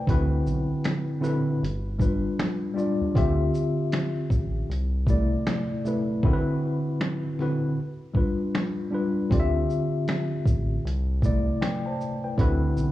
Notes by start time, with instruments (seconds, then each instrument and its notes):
Already playing: tine electric piano G5
0.07 analog synth bass D2, tine electric piano D3 C4 E4 F#4 B4, kick, closed hi-hat
0.46 analog synth bass B1, shaker
0.85 finger snap, snare, closed hi-hat
1.20 tine electric piano D3 C4 E4 F#4 B4, snare, shaker
1.62 analog synth bass G1, closed hi-hat
1.98 tine electric piano G3 D4 F4 B4, kick, shaker
2.39 finger snap, snare, closed hi-hat
2.74 tine electric piano G3 D4 F4 D5, shaker
3.01 analog synth bass D#2
3.14 analog synth bass D2, tine electric piano D3 C4 F4 G4 E5, kick, closed hi-hat
3.54 shaker
3.92 finger snap, snare, closed hi-hat
4.30 analog synth bass A1, kick, shaker
4.70 analog synth bass C2, closed hi-hat
5.07 tine electric piano C3 A3 E4 D5, kick, shaker
5.47 finger snap, snare, closed hi-hat
5.85 tine electric piano C3 A3 E4 B4, shaker
6.23 tine electric piano D3 C4 E4 F#4 A#4, kick
6.33 tine electric piano B4
7.01 finger snap, snare
7.39 tine electric piano D3 C4 E4 F#4 B4, snare
8.13 tine electric piano G3 D4 F4 B4, kick
8.55 finger snap, snare
8.91 tine electric piano G3 D4 F4 B4
9.29 analog synth bass D2, tine electric piano D3 C4 F4 G4 D5, kick, closed hi-hat
9.39 tine electric piano E5
9.70 shaker
10.08 finger snap, snare, closed hi-hat
10.45 analog synth bass A1, kick, shaker
10.85 analog synth bass C2, closed hi-hat
11.22 tine electric piano C3 A3 E4 D5, kick, shaker
11.61 tine electric piano B4 G5, finger snap, snare, closed hi-hat
11.86 tine electric piano C5 A5
12.01 shaker
12.24 tine electric piano B4 G5
12.38 analog synth bass D2, tine electric piano D3 C4 E4 F#4 B4, kick, closed hi-hat
12.77 analog synth bass B1, shaker